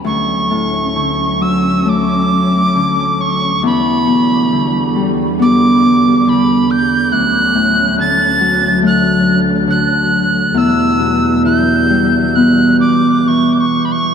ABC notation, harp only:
X:1
M:4/4
L:1/8
Q:1/4=68
K:D
V:1 name="Harp" clef=bass
D,, A,, D, F, A,2 D,2 | E,, B,, D, G, B,2 D,2 | D,, A,, D, F, A,2 D,2 | E,, B,, E, G, B,2 E,2 |]